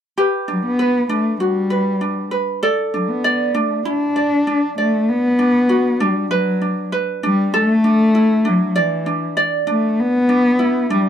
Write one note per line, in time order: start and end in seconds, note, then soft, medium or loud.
0.17 2.63 G4 medium
0.17 0.78 B4 soft
0.48 0.64 F#3 medium
0.48 1.09 D4 soft
0.65 1.07 B3 medium
0.79 1.69 B4 medium
1.09 1.39 A3 medium
1.09 2.01 D4 medium
1.40 2.29 G3 medium
1.40 2.62 F#4 soft
1.70 2.30 B4 soft
2.01 2.93 D4 soft
2.31 2.62 B4 medium
2.63 5.08 A4 medium
2.63 3.24 D5 medium
2.94 3.11 F#3 medium
2.94 3.54 D4 soft
3.09 3.57 B3 medium
3.24 4.16 D5 medium
3.54 3.86 A3 medium
3.54 3.85 D4 medium
3.85 4.74 D4 medium
3.85 4.47 E4 medium
4.16 4.77 D5 soft
4.47 5.38 D4 soft
4.78 5.11 A3 medium
4.78 8.18 D5 medium
5.09 6.04 B3 loud
5.39 6.00 D4 soft
5.69 7.59 F#4 medium
6.00 6.31 G3 medium
6.00 6.61 D4 medium
6.31 6.88 F#3 medium
6.31 6.91 B4 medium
6.61 7.23 D4 soft
6.92 7.53 B4 medium
7.23 7.52 G3 medium
7.23 7.84 D4 medium
7.54 8.49 A3 loud
7.54 9.36 A4 medium
7.84 8.44 D4 soft
8.15 10.32 E4 medium
8.45 8.80 F#3 medium
8.45 9.06 D4 medium
8.76 9.38 E3 medium
8.76 9.37 D5 medium
9.06 9.66 D4 soft
9.37 10.62 D5 medium
9.67 10.01 A3 medium
9.67 10.28 D4 medium
10.00 10.91 B3 loud
10.29 10.90 D4 soft
10.59 11.09 E4 medium
10.90 11.09 G3 medium
10.90 11.09 D4 medium